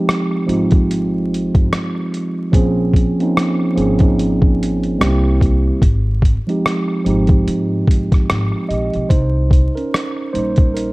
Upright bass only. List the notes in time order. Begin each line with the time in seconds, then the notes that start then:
0.49 G#1
1.55 G1
2.54 A#1
3.77 G#1
5.01 C2
5.82 G#1
7.06 G#1
7.47 G#2
7.88 G#1
8.30 G#1
8.70 A#1
8.95 B1
9.11 C2
10.35 A#1